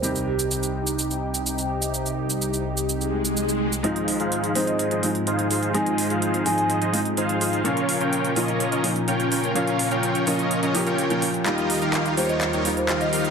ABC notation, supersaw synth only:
X:1
M:4/4
L:1/16
Q:1/4=126
K:Ab
V:1 name="Supersaw synth"
z16 | z16 | [EFAce]3 [EFAcf]3 [EFAce]3 [EFAce]2 z [EFAcf]2 [EFAcf]2 | [EFAce]3 [EFAcf]3 [EFAce]3 [EFAce]2 z [EFAcf]2 [EFAcf]2 |
[DFBdf]3 [DFBdg]3 [DFBde]3 [DFBde]2 z [DFBdg]2 [DFBdg]2 | [DFBdf]3 [DFBdg]3 [DFBde]3 [DFBde]2 [DFBdg]2 [DFBdg]2 z | [EFGBe]3 [EFGBf]3 [EFGBd]3 [EFGBd]2 z [EFGBf]2 [EFGBf]2 |]